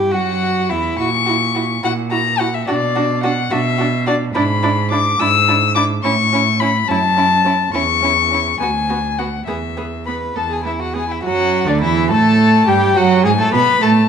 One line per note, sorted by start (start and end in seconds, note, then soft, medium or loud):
0.00 0.14 G2 medium
0.00 0.13 G4 medium
0.00 0.14 G4 medium
0.12 0.72 F#2 medium
0.12 0.71 F#4 medium
0.12 0.72 F#4 medium
0.12 0.72 F#5 medium
0.70 0.99 E2 medium
0.70 0.99 E4 medium
0.70 0.98 E4 medium
0.70 0.98 E5 medium
0.98 1.74 A#2 medium
0.98 1.06 E4 medium
0.98 1.08 F#4 medium
0.98 1.82 C#6 medium
1.26 1.36 E4 medium
1.26 1.34 F#4 soft
1.55 1.63 E4 medium
1.55 1.63 F#4 soft
1.83 2.58 A#2 medium
1.83 1.91 E4 medium
1.83 1.91 F#4 medium
1.83 1.92 F#5 medium
2.11 2.19 E4 medium
2.11 2.19 F#4 medium
2.11 2.41 A#5 medium
2.39 2.48 E4 soft
2.39 2.48 F#4 medium
2.39 2.56 F#5 medium
2.54 2.67 E5 medium
2.68 3.42 B2 medium
2.68 2.76 D4 medium
2.68 2.76 F#4 medium
2.68 3.23 D5 medium
2.96 3.04 D4 medium
2.96 3.04 F#4 medium
3.23 3.32 D4 medium
3.23 3.32 F#4 medium
3.23 3.53 F#5 medium
3.51 4.26 B2 medium
3.51 3.60 D4 medium
3.51 3.59 F#4 medium
3.51 4.06 E5 medium
3.78 3.88 D4 medium
3.78 3.86 F#4 medium
4.07 4.16 D4 medium
4.07 4.15 F#4 medium
4.07 4.15 D5 medium
4.34 5.10 G#2 medium
4.34 4.43 D4 medium
4.34 4.43 E4 medium
4.34 4.90 B5 medium
4.63 4.71 D4 medium
4.63 4.71 E4 medium
4.91 4.99 D4 medium
4.91 5.01 E4 medium
4.91 5.21 D6 medium
5.19 5.94 G#2 medium
5.19 5.27 D4 medium
5.19 5.29 E4 medium
5.19 5.75 E6 loud
5.48 5.56 D4 medium
5.48 5.57 E4 medium
5.75 5.83 D4 medium
5.75 5.84 E4 medium
5.75 5.83 D6 loud
6.03 6.79 A2 medium
6.03 6.12 C#4 medium
6.03 6.13 E4 medium
6.03 6.61 C#6 medium
6.33 6.41 C#4 medium
6.33 6.43 E4 medium
6.60 6.69 C#4 medium
6.60 6.70 E4 medium
6.60 6.90 B5 medium
6.88 7.64 F#2 medium
6.88 6.97 C#4 medium
6.88 6.99 E4 medium
6.88 7.73 A5 loud
7.17 7.25 C#4 medium
7.17 7.26 E4 medium
7.45 7.53 C#4 soft
7.45 7.54 E4 soft
7.74 8.50 E2 medium
7.74 7.82 C#4 medium
7.74 7.83 E4 medium
7.74 8.59 C#6 loud
8.02 8.10 C#4 medium
8.02 8.12 E4 soft
8.31 8.39 C#4 soft
8.31 8.42 E4 soft
8.60 9.37 D2 medium
8.60 8.68 B3 soft
8.60 8.71 F#4 soft
8.60 9.20 G#5 medium
8.89 8.97 B3 soft
8.89 8.98 F#4 soft
9.18 9.27 B3 soft
9.18 9.27 F#4 soft
9.18 9.45 F#5 medium
9.46 10.26 E2 soft
9.46 9.56 B3 soft
9.46 9.56 G#4 soft
9.46 10.05 E5 medium
9.77 9.85 B3 soft
9.77 9.85 G#4 soft
10.06 10.16 B3 soft
10.06 10.38 B4 soft
10.06 10.14 B5 medium
10.36 11.14 E2 medium
10.36 10.44 B3 soft
10.36 10.50 A4 soft
10.36 10.54 A5 medium
10.50 10.63 G#4 soft
10.50 10.65 G#5 medium
10.64 10.74 B3 soft
10.64 10.81 E4 soft
10.64 10.72 E5 medium
10.80 10.95 F#4 medium
10.80 10.96 F#5 medium
10.94 11.03 B3 soft
10.94 11.08 G#4 medium
10.94 11.13 G#5 medium
11.09 11.23 E4 soft
11.09 11.24 E5 medium
11.23 11.65 F#2 medium
11.23 11.69 F#3 medium
11.23 11.69 F#4 medium
11.23 11.70 F#5 medium
11.67 11.84 D2 medium
11.67 11.83 D3 medium
11.67 11.81 D4 medium
11.67 11.82 D5 medium
11.81 12.12 E2 medium
11.81 12.13 E3 medium
11.81 12.10 E4 medium
11.81 12.11 E5 medium
12.11 12.67 A2 medium
12.11 12.69 A3 medium
12.11 12.66 A4 medium
12.11 12.69 A5 medium
12.67 12.97 G2 medium
12.67 12.95 G3 medium
12.67 12.98 G4 medium
12.67 12.98 G5 medium
12.96 13.26 F#2 medium
12.96 13.25 F#3 medium
12.96 13.25 F#4 medium
12.96 13.25 F#5 medium
13.24 13.39 G#2 medium
13.24 13.37 G#3 medium
13.24 13.31 G#4 medium
13.24 13.43 G#5 medium
13.38 13.45 A2 medium
13.38 13.54 A3 medium
13.38 13.53 A4 medium
13.38 13.54 A5 medium
13.52 13.62 B2 medium
13.52 13.81 B3 medium
13.52 13.81 B4 medium
13.52 13.84 B5 medium
13.81 14.09 A2 medium
13.81 14.09 A3 medium
13.81 13.90 A4 medium
13.81 14.09 A5 medium